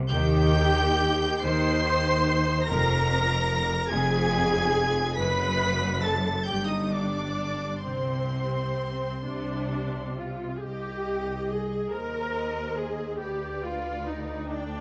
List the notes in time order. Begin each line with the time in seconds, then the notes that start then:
0.10 D#2 D#3 G4 G5 G6
1.42 D#2 D#3 C5 C6 C7
2.66 F1 F2 A#4 A#5 A#6
3.90 F1 F2 G#4 G#5 G#6
5.17 F#1 F#2 B4 B5 B6
6.02 A4 A5 A6
6.46 G1 G2 G4 G5 G6
6.68 D#4 D#5 D#6
6.91 D4 D5 D6
7.82 C2 C3 C4 C5 C6
9.25 C2 C3 D4
10.18 F4
10.57 G#4
10.62 C2 G4 D#5
11.51 G#4
11.92 D#2 A#4 C5 D#5
12.78 G#4
13.20 D2 G4 B4 D5
13.63 F4
14.06 D#4
14.49 D4 D5 G5